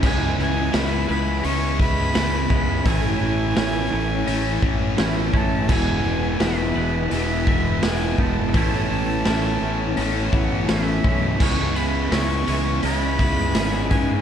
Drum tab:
CC |x-------|--------|x-------|--------|
HH |--o-o-o-|o-o-o-o-|--o-o-o-|o-o-o-o-|
SD |-oo---o-|--o---o-|--o---o-|--o---o-|
BD |o----o-o|o----o-o|o----o-o|o----o-o|

CC |x-------|
HH |-ooooooo|
SD |--o---o-|
BD |o----o-o|